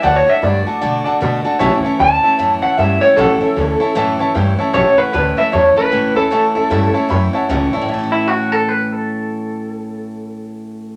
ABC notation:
X:1
M:4/4
L:1/8
Q:"Swing" 1/4=153
K:Amix
V:1 name="Upright piano"
[dfa] [dfa] [dfb] [dfa] [dfa] [dfa] [dfa] [dfa] | [cea] [cea] [ceb] [cea] [cea] [cea] e [ceg] | [cef] [cea] [cea] [cea] [cea] [cea] [ceg] [cea] | [cea] [cef] [cea] [cea] [cea] [cea] [cea] [ceb] |
[cea] [cea] [cea] [cea] [cegb] [cefa] [cea] [cdea] | [cea]8- | [cea]8 |]
V:2 name="Clean electric guitar"
(3f c e d4 z2 | z2 a3 f e c | A4 z4 | c B B e c B2 A- |
A3 z4 z | z E F A B A3- | A8 |]
V:3 name="Steel-string acoustic guitar"
[D,A,DF] [A,DF] [D,A,DF] [A,DF] [D,A,DF] [A,DF] [D,A,DF] [A,DF] | [A,,E,A,CE] [A,CE] [E,A,CE] [A,CE] [A,,E,A,CE] [A,CE] [E,A,CE] [A,CE] | [A,,E,A,CE] [A,CE] [E,A,CE] [A,CE] [A,,E,A,CE] [A,CE] [E,A,CE] [A,CE] | [A,,E,A,CE] [A,CE] [A,,E,A,CE] [A,CE] [E,A,CE] [A,CE] [A,,E,A,CE] [A,CE] |
[A,,E,A,CE] [A,CE] [A,,E,A,CE] [A,CE] [E,A,CE] [A,CE] [A,,E,A,CE] [A,CE] | [A,,E,A,CE]8- | [A,,E,A,CE]8 |]
V:4 name="Upright bass" clef=bass
D,, z G,, z B,, D, B,, z | A,,, z D,, z F,, A,, G,, z | A,,, z D,, z F,, A,, G,, z | A,,, z D,, z E,, z C,, E,, |
A,,, E,, G,, z F,, z C,, z | A,,,8- | A,,,8 |]